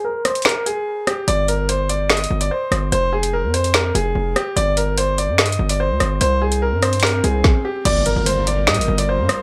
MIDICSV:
0, 0, Header, 1, 7, 480
1, 0, Start_track
1, 0, Tempo, 410959
1, 1493, Time_signature, 4, 2, 24, 8
1, 11005, End_track
2, 0, Start_track
2, 0, Title_t, "Grand piano"
2, 0, Program_c, 0, 0
2, 52, Note_on_c, 0, 70, 77
2, 267, Note_off_c, 0, 70, 0
2, 292, Note_on_c, 0, 72, 82
2, 507, Note_off_c, 0, 72, 0
2, 532, Note_on_c, 0, 70, 88
2, 747, Note_off_c, 0, 70, 0
2, 773, Note_on_c, 0, 68, 75
2, 1224, Note_off_c, 0, 68, 0
2, 1253, Note_on_c, 0, 67, 73
2, 1468, Note_off_c, 0, 67, 0
2, 1492, Note_on_c, 0, 74, 110
2, 1707, Note_off_c, 0, 74, 0
2, 1733, Note_on_c, 0, 70, 80
2, 1948, Note_off_c, 0, 70, 0
2, 1973, Note_on_c, 0, 72, 84
2, 2188, Note_off_c, 0, 72, 0
2, 2213, Note_on_c, 0, 74, 79
2, 2428, Note_off_c, 0, 74, 0
2, 2453, Note_on_c, 0, 75, 87
2, 2791, Note_off_c, 0, 75, 0
2, 2813, Note_on_c, 0, 74, 78
2, 2920, Note_off_c, 0, 74, 0
2, 2934, Note_on_c, 0, 72, 77
2, 3384, Note_off_c, 0, 72, 0
2, 3414, Note_on_c, 0, 72, 102
2, 3628, Note_off_c, 0, 72, 0
2, 3652, Note_on_c, 0, 68, 80
2, 3867, Note_off_c, 0, 68, 0
2, 3893, Note_on_c, 0, 70, 77
2, 4108, Note_off_c, 0, 70, 0
2, 4133, Note_on_c, 0, 72, 88
2, 4348, Note_off_c, 0, 72, 0
2, 4374, Note_on_c, 0, 70, 84
2, 4588, Note_off_c, 0, 70, 0
2, 4613, Note_on_c, 0, 68, 80
2, 5064, Note_off_c, 0, 68, 0
2, 5092, Note_on_c, 0, 67, 86
2, 5307, Note_off_c, 0, 67, 0
2, 5332, Note_on_c, 0, 74, 113
2, 5547, Note_off_c, 0, 74, 0
2, 5574, Note_on_c, 0, 70, 81
2, 5788, Note_off_c, 0, 70, 0
2, 5814, Note_on_c, 0, 72, 88
2, 6029, Note_off_c, 0, 72, 0
2, 6054, Note_on_c, 0, 74, 81
2, 6268, Note_off_c, 0, 74, 0
2, 6293, Note_on_c, 0, 75, 77
2, 6631, Note_off_c, 0, 75, 0
2, 6654, Note_on_c, 0, 74, 75
2, 6761, Note_off_c, 0, 74, 0
2, 6774, Note_on_c, 0, 72, 84
2, 7225, Note_off_c, 0, 72, 0
2, 7254, Note_on_c, 0, 72, 106
2, 7468, Note_off_c, 0, 72, 0
2, 7494, Note_on_c, 0, 68, 77
2, 7708, Note_off_c, 0, 68, 0
2, 7733, Note_on_c, 0, 70, 79
2, 7948, Note_off_c, 0, 70, 0
2, 7974, Note_on_c, 0, 72, 83
2, 8188, Note_off_c, 0, 72, 0
2, 8212, Note_on_c, 0, 70, 88
2, 8427, Note_off_c, 0, 70, 0
2, 8453, Note_on_c, 0, 68, 76
2, 8904, Note_off_c, 0, 68, 0
2, 8933, Note_on_c, 0, 67, 75
2, 9148, Note_off_c, 0, 67, 0
2, 9173, Note_on_c, 0, 74, 110
2, 9388, Note_off_c, 0, 74, 0
2, 9412, Note_on_c, 0, 70, 80
2, 9627, Note_off_c, 0, 70, 0
2, 9652, Note_on_c, 0, 72, 85
2, 9867, Note_off_c, 0, 72, 0
2, 9893, Note_on_c, 0, 74, 81
2, 10108, Note_off_c, 0, 74, 0
2, 10132, Note_on_c, 0, 75, 91
2, 10471, Note_off_c, 0, 75, 0
2, 10493, Note_on_c, 0, 74, 77
2, 10601, Note_off_c, 0, 74, 0
2, 10615, Note_on_c, 0, 72, 79
2, 11005, Note_off_c, 0, 72, 0
2, 11005, End_track
3, 0, Start_track
3, 0, Title_t, "Analog synth pad"
3, 0, Program_c, 1, 89
3, 9173, Note_on_c, 1, 55, 80
3, 9173, Note_on_c, 1, 65, 70
3, 9173, Note_on_c, 1, 70, 90
3, 11005, Note_off_c, 1, 55, 0
3, 11005, Note_off_c, 1, 65, 0
3, 11005, Note_off_c, 1, 70, 0
3, 11005, End_track
4, 0, Start_track
4, 0, Title_t, "808-style bass"
4, 0, Program_c, 2, 38
4, 1492, Note_on_c, 2, 31, 113
4, 2646, Note_off_c, 2, 31, 0
4, 2693, Note_on_c, 2, 31, 105
4, 2923, Note_off_c, 2, 31, 0
4, 3171, Note_on_c, 2, 31, 105
4, 3402, Note_off_c, 2, 31, 0
4, 3413, Note_on_c, 2, 29, 107
4, 4012, Note_on_c, 2, 41, 101
4, 4029, Note_off_c, 2, 29, 0
4, 4582, Note_off_c, 2, 41, 0
4, 4611, Note_on_c, 2, 29, 105
4, 4842, Note_off_c, 2, 29, 0
4, 4851, Note_on_c, 2, 29, 102
4, 5082, Note_off_c, 2, 29, 0
4, 5332, Note_on_c, 2, 31, 112
4, 6172, Note_on_c, 2, 43, 98
4, 6189, Note_off_c, 2, 31, 0
4, 6514, Note_off_c, 2, 43, 0
4, 6531, Note_on_c, 2, 31, 108
4, 6893, Note_on_c, 2, 38, 96
4, 6910, Note_off_c, 2, 31, 0
4, 7007, Note_off_c, 2, 38, 0
4, 7012, Note_on_c, 2, 31, 106
4, 7243, Note_off_c, 2, 31, 0
4, 7251, Note_on_c, 2, 36, 108
4, 7853, Note_on_c, 2, 43, 102
4, 7870, Note_off_c, 2, 36, 0
4, 8423, Note_off_c, 2, 43, 0
4, 8453, Note_on_c, 2, 36, 104
4, 8683, Note_off_c, 2, 36, 0
4, 9172, Note_on_c, 2, 31, 115
4, 9518, Note_off_c, 2, 31, 0
4, 9534, Note_on_c, 2, 31, 106
4, 10132, Note_on_c, 2, 46, 102
4, 10150, Note_off_c, 2, 31, 0
4, 10253, Note_on_c, 2, 31, 103
4, 10271, Note_off_c, 2, 46, 0
4, 10367, Note_off_c, 2, 31, 0
4, 10373, Note_on_c, 2, 31, 110
4, 10733, Note_on_c, 2, 43, 100
4, 10750, Note_off_c, 2, 31, 0
4, 10847, Note_off_c, 2, 43, 0
4, 11005, End_track
5, 0, Start_track
5, 0, Title_t, "Impact"
5, 0, Program_c, 3, 103
5, 9173, Note_on_c, 3, 60, 88
5, 11005, Note_off_c, 3, 60, 0
5, 11005, End_track
6, 0, Start_track
6, 0, Title_t, "Swell"
6, 0, Program_c, 4, 103
6, 7253, Note_on_c, 4, 60, 86
6, 9173, Note_off_c, 4, 60, 0
6, 11005, End_track
7, 0, Start_track
7, 0, Title_t, "Drums"
7, 292, Note_on_c, 9, 42, 73
7, 293, Note_on_c, 9, 37, 87
7, 409, Note_off_c, 9, 42, 0
7, 410, Note_off_c, 9, 37, 0
7, 412, Note_on_c, 9, 42, 46
7, 492, Note_off_c, 9, 42, 0
7, 492, Note_on_c, 9, 42, 60
7, 526, Note_on_c, 9, 26, 92
7, 532, Note_on_c, 9, 38, 111
7, 573, Note_off_c, 9, 42, 0
7, 573, Note_on_c, 9, 42, 74
7, 643, Note_off_c, 9, 26, 0
7, 649, Note_off_c, 9, 38, 0
7, 690, Note_off_c, 9, 42, 0
7, 776, Note_on_c, 9, 42, 77
7, 892, Note_off_c, 9, 42, 0
7, 1253, Note_on_c, 9, 37, 97
7, 1253, Note_on_c, 9, 42, 66
7, 1370, Note_off_c, 9, 37, 0
7, 1370, Note_off_c, 9, 42, 0
7, 1492, Note_on_c, 9, 42, 87
7, 1609, Note_off_c, 9, 42, 0
7, 1733, Note_on_c, 9, 42, 73
7, 1850, Note_off_c, 9, 42, 0
7, 1973, Note_on_c, 9, 42, 96
7, 2090, Note_off_c, 9, 42, 0
7, 2213, Note_on_c, 9, 42, 74
7, 2330, Note_off_c, 9, 42, 0
7, 2448, Note_on_c, 9, 26, 92
7, 2453, Note_on_c, 9, 38, 110
7, 2453, Note_on_c, 9, 42, 69
7, 2534, Note_off_c, 9, 42, 0
7, 2534, Note_on_c, 9, 42, 65
7, 2564, Note_off_c, 9, 26, 0
7, 2570, Note_off_c, 9, 38, 0
7, 2613, Note_off_c, 9, 42, 0
7, 2613, Note_on_c, 9, 42, 68
7, 2730, Note_off_c, 9, 42, 0
7, 2813, Note_on_c, 9, 42, 80
7, 2929, Note_off_c, 9, 42, 0
7, 3173, Note_on_c, 9, 37, 99
7, 3174, Note_on_c, 9, 42, 66
7, 3290, Note_off_c, 9, 37, 0
7, 3291, Note_off_c, 9, 42, 0
7, 3414, Note_on_c, 9, 42, 83
7, 3531, Note_off_c, 9, 42, 0
7, 3774, Note_on_c, 9, 42, 72
7, 3891, Note_off_c, 9, 42, 0
7, 4134, Note_on_c, 9, 42, 73
7, 4250, Note_off_c, 9, 42, 0
7, 4254, Note_on_c, 9, 42, 46
7, 4367, Note_on_c, 9, 26, 93
7, 4371, Note_off_c, 9, 42, 0
7, 4372, Note_on_c, 9, 38, 115
7, 4373, Note_on_c, 9, 42, 75
7, 4484, Note_off_c, 9, 26, 0
7, 4489, Note_off_c, 9, 38, 0
7, 4490, Note_off_c, 9, 42, 0
7, 4616, Note_on_c, 9, 42, 75
7, 4733, Note_off_c, 9, 42, 0
7, 5093, Note_on_c, 9, 37, 99
7, 5094, Note_on_c, 9, 42, 66
7, 5210, Note_off_c, 9, 37, 0
7, 5211, Note_off_c, 9, 42, 0
7, 5334, Note_on_c, 9, 42, 85
7, 5451, Note_off_c, 9, 42, 0
7, 5572, Note_on_c, 9, 42, 76
7, 5688, Note_off_c, 9, 42, 0
7, 5811, Note_on_c, 9, 42, 95
7, 5928, Note_off_c, 9, 42, 0
7, 6053, Note_on_c, 9, 42, 75
7, 6169, Note_off_c, 9, 42, 0
7, 6287, Note_on_c, 9, 26, 92
7, 6292, Note_on_c, 9, 38, 114
7, 6292, Note_on_c, 9, 42, 67
7, 6373, Note_off_c, 9, 42, 0
7, 6373, Note_on_c, 9, 42, 65
7, 6403, Note_off_c, 9, 26, 0
7, 6409, Note_off_c, 9, 38, 0
7, 6452, Note_off_c, 9, 42, 0
7, 6452, Note_on_c, 9, 42, 66
7, 6569, Note_off_c, 9, 42, 0
7, 6651, Note_on_c, 9, 42, 79
7, 6768, Note_off_c, 9, 42, 0
7, 7012, Note_on_c, 9, 37, 100
7, 7012, Note_on_c, 9, 42, 67
7, 7128, Note_off_c, 9, 37, 0
7, 7129, Note_off_c, 9, 42, 0
7, 7252, Note_on_c, 9, 42, 82
7, 7369, Note_off_c, 9, 42, 0
7, 7612, Note_on_c, 9, 42, 72
7, 7729, Note_off_c, 9, 42, 0
7, 7971, Note_on_c, 9, 42, 76
7, 7973, Note_on_c, 9, 37, 88
7, 8088, Note_off_c, 9, 42, 0
7, 8089, Note_off_c, 9, 37, 0
7, 8092, Note_on_c, 9, 42, 46
7, 8172, Note_off_c, 9, 42, 0
7, 8172, Note_on_c, 9, 42, 61
7, 8207, Note_on_c, 9, 26, 92
7, 8212, Note_on_c, 9, 38, 114
7, 8252, Note_off_c, 9, 42, 0
7, 8252, Note_on_c, 9, 42, 73
7, 8324, Note_off_c, 9, 26, 0
7, 8329, Note_off_c, 9, 38, 0
7, 8369, Note_off_c, 9, 42, 0
7, 8455, Note_on_c, 9, 42, 74
7, 8572, Note_off_c, 9, 42, 0
7, 8692, Note_on_c, 9, 36, 112
7, 8692, Note_on_c, 9, 38, 94
7, 8809, Note_off_c, 9, 36, 0
7, 8809, Note_off_c, 9, 38, 0
7, 9172, Note_on_c, 9, 42, 88
7, 9173, Note_on_c, 9, 49, 106
7, 9289, Note_off_c, 9, 42, 0
7, 9289, Note_off_c, 9, 49, 0
7, 9411, Note_on_c, 9, 42, 75
7, 9528, Note_off_c, 9, 42, 0
7, 9652, Note_on_c, 9, 42, 93
7, 9768, Note_off_c, 9, 42, 0
7, 9893, Note_on_c, 9, 42, 77
7, 10009, Note_off_c, 9, 42, 0
7, 10127, Note_on_c, 9, 26, 93
7, 10133, Note_on_c, 9, 38, 117
7, 10133, Note_on_c, 9, 42, 71
7, 10213, Note_off_c, 9, 42, 0
7, 10213, Note_on_c, 9, 42, 69
7, 10244, Note_off_c, 9, 26, 0
7, 10250, Note_off_c, 9, 38, 0
7, 10292, Note_off_c, 9, 42, 0
7, 10292, Note_on_c, 9, 42, 71
7, 10409, Note_off_c, 9, 42, 0
7, 10491, Note_on_c, 9, 42, 83
7, 10608, Note_off_c, 9, 42, 0
7, 10852, Note_on_c, 9, 37, 105
7, 10852, Note_on_c, 9, 42, 68
7, 10968, Note_off_c, 9, 37, 0
7, 10969, Note_off_c, 9, 42, 0
7, 11005, End_track
0, 0, End_of_file